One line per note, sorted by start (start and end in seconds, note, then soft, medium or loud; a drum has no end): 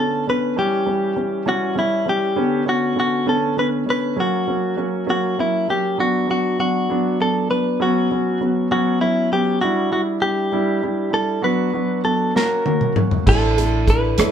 0.00 0.22 D3 medium
0.00 0.23 B3 soft
0.00 0.23 C#4 medium
0.00 0.26 A4 medium
0.27 0.53 D3 medium
0.27 0.53 B3 soft
0.27 0.53 C#4 medium
0.27 0.58 B4 medium
0.56 0.82 E3 medium
0.56 0.82 G3 medium
0.56 0.83 C#4 medium
0.56 1.48 G4 medium
0.86 1.12 E3 medium
0.86 1.12 G3 medium
0.86 1.12 C#4 medium
1.16 1.42 E3 medium
1.16 1.42 G3 soft
1.16 1.42 C#4 medium
1.46 1.72 E3 medium
1.46 1.72 G3 medium
1.46 1.72 C#4 medium
1.46 1.78 F#4 medium
1.75 2.02 E3 medium
1.75 2.02 G3 soft
1.75 2.02 C#4 medium
1.75 2.08 E4 medium
2.05 2.32 E3 medium
2.05 2.32 G3 medium
2.05 2.32 C#4 medium
2.05 2.64 G4 medium
2.36 2.62 D3 medium
2.36 2.62 B3 medium
2.36 2.62 C#4 medium
2.66 2.92 D3 medium
2.66 2.92 B3 medium
2.66 2.92 C#4 medium
2.66 2.98 F#4 medium
2.96 3.22 D3 medium
2.96 3.22 B3 soft
2.96 3.22 C#4 medium
2.96 3.29 F#4 medium
3.26 3.52 D3 medium
3.26 3.52 B3 medium
3.26 3.53 C#4 medium
3.26 3.59 A4 medium
3.57 3.83 D3 medium
3.57 3.83 B3 medium
3.57 3.83 C#4 medium
3.57 3.67 B4 medium
3.86 4.12 D3 soft
3.86 4.13 B3 soft
3.86 4.13 C#4 medium
3.90 4.20 B4 medium
4.16 4.43 F#3 medium
4.16 4.43 A#3 medium
4.16 4.43 C#4 medium
4.16 5.09 F#4 medium
4.47 4.74 F#3 medium
4.47 4.74 A#3 medium
4.47 4.74 C#4 medium
4.77 5.03 F#3 medium
4.77 5.04 A#3 soft
4.77 5.04 C#4 medium
5.06 5.33 F#3 medium
5.06 5.34 A#3 medium
5.06 5.34 C#4 medium
5.06 5.40 F#4 medium
5.38 5.64 F#3 soft
5.38 5.65 A#3 soft
5.38 5.65 C#4 medium
5.38 5.70 E4 medium
5.68 5.95 F#3 soft
5.68 5.95 A#3 soft
5.68 5.95 C#4 medium
5.68 6.00 G4 medium
5.98 6.25 F#3 medium
5.98 6.25 B3 medium
5.98 6.25 D4 medium
5.98 6.30 F#4 medium
6.27 6.55 F#3 medium
6.27 6.55 B3 soft
6.27 6.55 D4 medium
6.27 6.59 F#4 medium
6.59 6.86 F#3 medium
6.59 6.86 B3 soft
6.59 6.86 D4 medium
6.59 7.21 F#4 medium
6.89 7.16 F#3 medium
6.89 7.16 B3 medium
6.89 7.16 D4 medium
7.20 7.47 F#3 medium
7.20 7.47 B3 soft
7.20 7.47 D4 medium
7.20 7.50 A4 medium
7.49 7.76 F#3 soft
7.49 7.76 B3 soft
7.49 7.77 D4 medium
7.49 7.82 B4 medium
7.80 8.06 F#3 medium
7.80 8.06 B3 medium
7.80 8.07 C#4 medium
7.80 8.68 F#4 medium
8.10 8.37 F#3 medium
8.10 8.37 B3 soft
8.10 8.37 C#4 medium
8.41 8.67 F#3 medium
8.41 8.67 B3 medium
8.41 8.67 C#4 medium
8.71 8.97 F#3 medium
8.71 8.97 B3 medium
8.71 8.97 C#4 medium
8.71 9.01 F#4 medium
9.01 9.27 F#3 medium
9.01 9.27 B3 soft
9.01 9.27 C#4 medium
9.01 9.32 E4 medium
9.32 9.58 F#3 medium
9.32 9.58 B3 soft
9.32 9.58 C#4 medium
9.32 9.61 G4 medium
9.61 9.88 G3 medium
9.61 9.88 D4 medium
9.61 9.88 E4 medium
9.61 9.90 F#4 medium
9.91 10.17 G3 medium
9.91 10.18 D4 medium
9.91 10.18 E4 medium
9.91 10.01 F#4 medium
10.22 10.48 G3 medium
10.22 10.48 D4 medium
10.22 10.48 E4 medium
10.22 11.13 G4 medium
10.52 10.78 G3 medium
10.52 10.78 D4 medium
10.52 10.79 E4 medium
10.83 11.09 G3 medium
10.83 11.09 D4 medium
10.83 11.09 E4 medium
11.11 11.38 G3 medium
11.11 11.38 D4 soft
11.11 11.38 E4 medium
11.11 11.44 A4 medium
11.42 11.69 F#3 medium
11.42 11.69 B3 medium
11.42 11.69 D4 medium
11.42 11.69 F#4 medium
11.42 12.04 B4 medium
11.73 12.00 F#3 medium
11.73 12.00 B3 medium
11.73 12.00 D4 medium
11.73 12.00 F#4 medium
12.04 12.31 F#3 medium
12.04 12.30 B3 soft
12.04 12.31 D4 soft
12.04 12.31 F#4 medium
12.04 12.33 A4 medium
12.35 12.61 A#3 medium
12.35 12.61 C#4 medium
12.35 12.62 F#4 medium
12.35 13.01 A#4 medium
12.35 snare soft
12.65 12.92 A#3 medium
12.65 12.92 C#4 soft
12.65 12.92 F#4 medium
12.65 high tom medium
12.81 mid tom medium
12.96 13.22 A#3 soft
12.96 13.22 C#4 soft
12.96 13.23 F#4 medium
12.96 mid tom medium
13.11 floor tom medium
13.26 14.14 A1 medium
13.26 13.53 A3 medium
13.26 13.53 D4 medium
13.26 13.53 E4 medium
13.26 13.90 A4 medium
13.26 kick medium
13.26 crash medium
13.57 13.83 A3 medium
13.57 13.84 D4 medium
13.57 13.84 E4 medium
13.57 closed hi-hat soft
13.87 14.14 A3 medium
13.87 14.14 D4 medium
13.87 14.14 E4 medium
13.87 14.31 B4 medium
13.87 kick medium
13.87 cross-stick soft
13.87 closed hi-hat soft
14.18 14.31 E2 medium
14.18 14.31 A3 medium
14.18 14.31 D4 medium
14.18 14.31 E4 medium
14.18 cross-stick medium
14.18 closed hi-hat medium